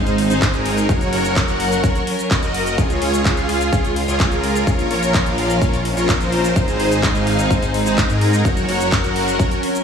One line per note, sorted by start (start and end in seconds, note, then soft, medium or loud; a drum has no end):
0.00 0.28 G#1 loud
0.00 0.87 G#3 medium
0.00 0.87 C4 medium
0.00 0.11 D#4 medium
0.00 0.87 D#4 medium
0.00 0.11 G#4 medium
0.00 0.11 C5 loud
0.07 closed hi-hat soft
0.07 cabasa soft
0.18 open hi-hat loud
0.30 0.51 G#1 loud
0.30 0.51 D#4 medium
0.30 0.51 G#4 medium
0.30 0.51 C5 medium
0.30 closed hi-hat soft
0.30 cabasa medium
0.42 kick loud
0.42 clap loud
0.42 closed hi-hat medium
0.42 cabasa medium
0.54 0.87 G#1 loud
0.54 0.86 D#4 medium
0.54 0.86 G#4 medium
0.54 0.86 A#4 medium
0.54 closed hi-hat soft
0.54 cabasa soft
0.66 open hi-hat loud
0.77 closed hi-hat soft
0.77 cabasa medium
0.89 1.10 F#1 loud
0.89 2.76 F#3 medium
0.89 2.76 C#4 medium
0.89 1.10 F#4 medium
0.89 1.10 A#4 medium
0.89 2.76 A#4 medium
0.89 1.10 C#5 loud
0.89 kick loud
0.89 closed hi-hat medium
0.89 cabasa medium
1.01 closed hi-hat soft
1.01 cabasa soft
1.13 1.46 F#1 loud
1.13 1.45 F#4 medium
1.13 1.45 A#4 medium
1.13 1.45 C#5 loud
1.13 open hi-hat loud
1.25 closed hi-hat soft
1.25 cabasa medium
1.36 kick loud
1.36 clap loud
1.36 closed hi-hat medium
1.36 cabasa medium
1.48 1.81 F#1 loud
1.48 1.81 F#4 medium
1.48 1.81 A#4 medium
1.48 1.81 F#5 medium
1.48 closed hi-hat soft
1.48 cabasa soft
1.60 open hi-hat loud
1.72 closed hi-hat soft
1.72 cabasa medium
1.84 1.98 F#1 loud
1.84 2.00 F#4 medium
1.84 2.00 A#4 medium
1.84 2.00 C#5 medium
1.84 kick loud
1.84 closed hi-hat medium
1.84 cabasa medium
1.95 closed hi-hat soft
1.95 cabasa soft
2.07 open hi-hat loud
2.19 closed hi-hat soft
2.19 cabasa medium
2.31 2.40 F#1 loud
2.31 2.40 F#4 medium
2.31 2.40 A#4 medium
2.31 2.40 D#5 medium
2.31 kick loud
2.31 clap loud
2.31 closed hi-hat medium
2.31 cabasa medium
2.43 2.76 F#1 loud
2.43 2.75 F#4 medium
2.43 2.75 A#4 medium
2.43 2.75 D#5 loud
2.43 closed hi-hat soft
2.43 cabasa soft
2.54 open hi-hat loud
2.66 closed hi-hat soft
2.66 cabasa medium
2.78 2.99 C#2 loud
2.78 4.65 C#3 medium
2.78 4.65 G#3 medium
2.78 4.65 F4 medium
2.78 2.99 F4 medium
2.78 2.99 G#4 medium
2.78 2.99 C#5 loud
2.78 kick loud
2.78 closed hi-hat medium
2.78 cabasa medium
2.90 closed hi-hat soft
2.90 cabasa soft
3.02 3.35 C#2 loud
3.02 3.34 F4 medium
3.02 3.34 G#4 medium
3.02 3.34 C#5 loud
3.02 open hi-hat loud
3.14 closed hi-hat soft
3.14 cabasa medium
3.25 kick loud
3.25 clap loud
3.25 closed hi-hat medium
3.25 cabasa medium
3.37 3.70 C#2 loud
3.37 3.70 F4 medium
3.37 3.70 G#4 medium
3.37 3.70 F5 medium
3.37 closed hi-hat soft
3.37 cabasa soft
3.49 open hi-hat loud
3.61 closed hi-hat soft
3.61 cabasa medium
3.73 4.06 C#2 loud
3.73 3.89 F4 medium
3.73 3.89 G#4 medium
3.73 3.89 C#5 loud
3.73 kick loud
3.73 closed hi-hat medium
3.73 cabasa medium
3.84 closed hi-hat soft
3.84 cabasa soft
3.96 open hi-hat loud
4.08 4.29 C#2 loud
4.08 4.29 F4 medium
4.08 4.29 G#4 medium
4.08 4.29 C#5 medium
4.08 closed hi-hat soft
4.08 cabasa medium
4.20 kick loud
4.20 clap loud
4.20 closed hi-hat medium
4.20 cabasa medium
4.32 4.65 C#2 loud
4.32 4.64 F4 medium
4.32 4.64 G#4 medium
4.32 4.64 A#4 medium
4.32 closed hi-hat soft
4.32 cabasa soft
4.44 open hi-hat loud
4.55 closed hi-hat soft
4.55 cabasa medium
4.67 4.88 A#1 loud
4.67 6.54 F3 medium
4.67 6.54 A#3 medium
4.67 6.54 C#4 medium
4.67 4.88 F4 medium
4.67 4.88 A#4 medium
4.67 4.88 C#5 loud
4.67 kick loud
4.67 closed hi-hat medium
4.67 cabasa medium
4.79 closed hi-hat soft
4.79 cabasa soft
4.91 5.24 A#1 loud
4.91 5.23 F4 medium
4.91 5.23 A#4 medium
4.91 5.23 C#5 loud
4.91 open hi-hat loud
5.03 closed hi-hat soft
5.03 cabasa medium
5.14 kick loud
5.14 clap loud
5.14 closed hi-hat medium
5.14 cabasa medium
5.26 5.59 A#1 loud
5.26 5.59 F4 medium
5.26 5.59 A#4 medium
5.26 5.59 F5 medium
5.26 closed hi-hat soft
5.26 cabasa soft
5.38 open hi-hat loud
5.50 closed hi-hat soft
5.50 cabasa medium
5.62 5.95 A#1 loud
5.62 5.78 F4 medium
5.62 5.78 A#4 medium
5.62 5.78 C#5 medium
5.62 kick loud
5.62 closed hi-hat medium
5.62 cabasa medium
5.73 closed hi-hat soft
5.73 cabasa soft
5.85 open hi-hat loud
5.97 6.18 A#1 loud
5.97 6.18 F4 medium
5.97 6.18 A#4 medium
5.97 6.18 C#5 medium
5.97 closed hi-hat soft
5.97 cabasa medium
6.09 kick loud
6.09 clap loud
6.09 closed hi-hat medium
6.09 cabasa medium
6.21 6.54 A#1 loud
6.21 6.53 F4 medium
6.21 6.53 A#4 medium
6.21 6.53 C5 medium
6.21 closed hi-hat soft
6.21 cabasa soft
6.32 open hi-hat loud
6.44 closed hi-hat soft
6.44 cabasa medium
6.56 6.77 G#1 loud
6.56 8.43 G#3 medium
6.56 8.43 C4 medium
6.56 6.77 D#4 medium
6.56 8.43 D#4 medium
6.56 6.77 G#4 medium
6.56 6.77 C5 loud
6.56 kick loud
6.56 closed hi-hat medium
6.56 cabasa medium
6.68 closed hi-hat soft
6.68 cabasa soft
6.80 7.13 G#1 loud
6.80 7.12 D#4 medium
6.80 7.12 G#4 medium
6.80 7.12 C5 loud
6.80 open hi-hat loud
6.91 closed hi-hat soft
6.91 cabasa medium
7.03 kick loud
7.03 clap loud
7.03 closed hi-hat medium
7.03 cabasa medium
7.15 7.48 G#1 loud
7.15 7.48 D#4 medium
7.15 7.48 G#4 medium
7.15 7.48 F5 medium
7.15 closed hi-hat soft
7.15 cabasa soft
7.27 open hi-hat loud
7.39 closed hi-hat soft
7.39 cabasa medium
7.51 7.84 G#1 loud
7.51 7.67 D#4 medium
7.51 7.67 G#4 medium
7.51 7.67 C5 loud
7.51 kick loud
7.51 closed hi-hat medium
7.51 cabasa medium
7.62 closed hi-hat soft
7.62 cabasa soft
7.74 open hi-hat loud
7.86 8.07 G#1 loud
7.86 8.07 D#4 medium
7.86 8.07 G#4 medium
7.86 8.07 C5 medium
7.86 closed hi-hat soft
7.86 cabasa medium
7.98 kick loud
7.98 clap loud
7.98 closed hi-hat medium
7.98 cabasa medium
8.10 8.43 G#2 loud
8.10 8.42 D#4 medium
8.10 8.42 G#4 medium
8.10 8.42 A#4 medium
8.10 closed hi-hat soft
8.10 cabasa soft
8.21 open hi-hat loud
8.33 closed hi-hat soft
8.33 cabasa medium
8.45 8.66 F#1 loud
8.45 9.84 F#3 medium
8.45 9.84 C#4 medium
8.45 8.66 F#4 medium
8.45 8.66 A#4 medium
8.45 9.84 A#4 medium
8.45 8.66 C#5 loud
8.45 kick loud
8.45 closed hi-hat medium
8.45 cabasa medium
8.57 closed hi-hat soft
8.57 cabasa soft
8.69 9.02 F#1 loud
8.69 9.01 F#4 medium
8.69 9.01 A#4 medium
8.69 9.01 C#5 loud
8.69 open hi-hat loud
8.80 closed hi-hat soft
8.80 cabasa medium
8.92 kick loud
8.92 clap loud
8.92 closed hi-hat medium
8.92 cabasa medium
9.04 9.37 F#1 loud
9.04 9.37 F#4 medium
9.04 9.37 A#4 medium
9.04 9.37 F#5 medium
9.04 closed hi-hat soft
9.04 cabasa soft
9.16 open hi-hat loud
9.28 closed hi-hat soft
9.28 cabasa medium
9.40 9.53 F#1 loud
9.40 9.56 F#4 medium
9.40 9.56 A#4 medium
9.40 9.56 C#5 medium
9.40 kick loud
9.40 closed hi-hat medium
9.40 swell medium
9.40 cabasa medium
9.51 closed hi-hat soft
9.51 cabasa soft
9.63 open hi-hat loud
9.75 closed hi-hat soft
9.75 cabasa medium